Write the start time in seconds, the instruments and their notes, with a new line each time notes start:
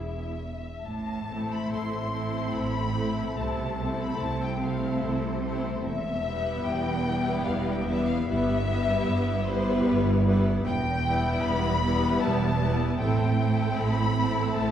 Already playing: double bass section E1, cello section E2, violin section E4 E5, viola section G#4
0.85 double bass section A1, cello section A2, violin section A5
1.30 viola section A3 C4, violin section E4 A4
1.53 violin section B5
1.72 double bass section A1, cello section A2, violin section C6
2.12 viola section A3 C4, violin section E4 A4
2.53 double bass section A1, cello section A2, violin section B5
2.93 viola section A3 C4, violin section E4 A4
3.36 double bass section C2, cello section C3, viola section A3 C4, violin section E4 A4 A5
3.79 viola section A3 C4, violin section E4 A4
4.02 violin section B5
4.21 double bass section C2, cello section C3, violin section A5
4.44 violin section G5
4.62 viola section A3 C4, violin section E4 A4 F5
5.03 double bass section C2, cello section C3, violin section C5
5.44 viola section A3 C4, violin section E4 A4
5.85 double bass section E1, cello section E2, violin section E5
6.27 viola section G3 B3, violin section E4 B4
6.65 double bass section E1, cello section E2, violin section G5
7.07 viola section G3 B3, violin section E4 B4
7.47 double bass section E1, cello section E2, violin section F5
7.69 violin section G5
7.86 viola section G3 B3, violin section E4 B4 E5
8.08 violin section F5
8.26 double bass section G1, cello section G2, viola section G3 B3, violin section E4 B4 E5
8.67 viola section G3 B3, violin section E4 B4
9.07 double bass section G1, cello section G2
9.46 viola section G3 B3, violin section E4 B4 C5
9.84 double bass section G1, cello section G2, violin section B4
10.26 viola section G3 B3, violin section E4 B4
10.66 double bass section E1, cello section E2, violin section G5
11.05 viola section G3 B3, violin section E4 B4
11.42 double bass section E1, cello section E2, violin section B5
11.83 viola section G3 B3, violin section E4 B4
12.22 double bass section E1, cello section E2, violin section A5
12.59 viola section G3 B3, violin section E4 B4
12.99 double bass section A1, cello section A2, viola section A3 C4, violin section E4 A4 G5
13.37 viola section A3 C4, violin section E4 A4
13.78 double bass section A1, cello section A2, violin section B5
14.16 viola section A3 C4, violin section E4 A4
14.58 double bass section A1, cello section A2, violin section A5